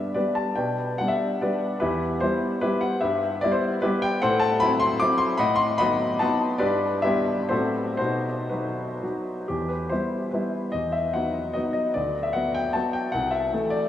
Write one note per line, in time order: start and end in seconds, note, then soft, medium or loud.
0.00 0.17 G2 medium
0.00 0.11 G3 soft
0.00 0.12 B3 soft
0.00 0.12 D4 soft
0.00 0.16 G4 medium
0.00 0.15 B4 soft
0.00 0.14 D5 medium
0.00 0.15 E5 medium
0.14 0.53 G3 soft
0.14 0.53 B3 soft
0.14 0.53 D4 soft
0.14 0.35 G4 soft
0.14 0.35 B4 medium
0.14 0.36 D5 medium
0.35 0.56 A5 medium
0.56 0.98 B2 soft
0.56 0.96 B4 soft
0.56 0.96 D5 soft
0.56 0.99 G5 medium
0.98 1.39 G3 soft
0.98 1.40 B3 soft
0.98 1.40 D4 soft
0.98 1.10 F#5 medium
1.08 1.42 E5 medium
1.42 1.78 G3 soft
1.42 1.78 B3 soft
1.42 1.79 D4 soft
1.42 1.79 G4 soft
1.42 1.78 B4 medium
1.42 1.81 D5 medium
1.80 2.21 E2 medium
1.80 2.19 E4 medium
1.80 2.19 G4 medium
1.80 2.21 B4 medium
2.20 2.59 G3 soft
2.20 2.60 B3 soft
2.20 2.60 E4 soft
2.20 2.63 C5 medium
2.61 2.98 G3 soft
2.61 2.99 B3 soft
2.61 2.81 E4 medium
2.61 2.81 G4 medium
2.61 2.82 B4 medium
2.81 3.01 F#5 medium
3.01 3.41 G2 medium
3.01 3.39 G4 medium
3.01 3.39 B4 medium
3.01 3.41 E5 medium
3.41 3.80 G3 soft
3.41 3.80 B3 soft
3.41 3.81 E4 medium
3.41 3.52 D5 medium
3.52 3.83 C5 medium
3.82 4.19 G3 soft
3.82 4.19 B3 medium
3.82 4.02 E4 medium
3.82 4.02 G4 medium
3.82 4.03 B4 medium
4.02 4.22 G5 medium
4.22 4.61 A2 medium
4.22 4.40 A4 medium
4.22 4.40 C5 medium
4.22 4.41 F#5 medium
4.40 4.61 A5 medium
4.60 4.98 F#3 soft
4.60 4.98 C4 medium
4.60 4.98 E4 medium
4.60 4.81 B5 loud
4.80 5.01 C6 loud
5.00 5.37 F#3 soft
5.00 5.37 C4 soft
5.00 5.37 E4 medium
5.00 5.20 D6 loud
5.18 5.39 C6 medium
5.38 5.79 A2 medium
5.38 5.58 D#5 medium
5.38 5.58 F#5 medium
5.38 5.59 B5 loud
5.56 5.79 C6 loud
5.78 6.18 F#3 medium
5.78 6.18 B3 soft
5.78 6.18 D#4 medium
5.78 6.18 D#5 medium
5.78 6.18 F#5 medium
5.78 6.21 B5 loud
6.19 6.57 F#3 soft
6.19 6.58 B3 medium
6.19 6.58 D#4 soft
6.19 6.40 D#5 medium
6.19 6.40 F#5 medium
6.19 6.41 A5 medium
6.58 7.03 G2 medium
6.58 7.01 G4 medium
6.58 7.01 B4 medium
6.58 7.03 D5 medium
7.02 7.47 G3 soft
7.02 7.47 B3 soft
7.02 7.47 E4 medium
7.02 7.48 G4 medium
7.02 7.47 B4 medium
7.02 7.50 E5 medium
7.49 7.97 A2 medium
7.49 7.94 F#3 soft
7.49 7.95 C4 soft
7.49 7.94 F#4 medium
7.49 7.95 A4 medium
7.49 7.96 C5 medium
7.97 8.50 B2 medium
7.97 8.48 D#4 medium
7.97 8.48 F#4 medium
7.97 8.51 C5 medium
8.49 8.99 F#3 soft
8.49 9.02 D#4 soft
8.49 9.02 F#4 soft
8.49 9.25 B4 medium
9.03 9.45 F#3 soft
9.03 9.45 D#4 soft
9.03 9.45 F#4 soft
9.48 9.90 E2 soft
9.48 9.69 G4 medium
9.69 9.91 B4 medium
9.89 10.30 G3 soft
9.89 10.30 B3 soft
9.89 10.31 E4 soft
9.89 10.33 C5 medium
10.31 10.70 G3 soft
10.31 10.70 B3 soft
10.31 10.70 E4 soft
10.31 10.72 B4 soft
10.72 11.13 E2 soft
10.72 10.93 D#5 medium
10.92 11.14 E5 medium
11.13 11.52 F#3 soft
11.13 11.52 B3 soft
11.13 11.52 D#4 soft
11.13 11.55 F#5 medium
11.54 11.91 F#3 soft
11.54 11.91 B3 soft
11.54 11.91 D#4 soft
11.54 11.72 D#5 medium
11.73 11.93 D#5 medium
11.94 12.34 D2 soft
11.94 12.24 D5 medium
12.23 12.34 E5 medium
12.33 12.72 F#3 soft
12.33 12.72 B3 soft
12.33 12.72 F#4 soft
12.33 12.55 F#5 medium
12.55 12.75 G5 medium
12.73 13.09 F#3 soft
12.73 13.10 B3 soft
12.73 13.10 F#4 soft
12.73 12.93 A5 medium
12.93 13.13 G5 medium
13.12 13.52 C2 soft
13.12 13.32 F#5 medium
13.31 13.72 E5 medium
13.53 13.89 E3 soft
13.53 13.89 A3 soft
13.53 13.89 A4 soft
13.70 13.89 D5 medium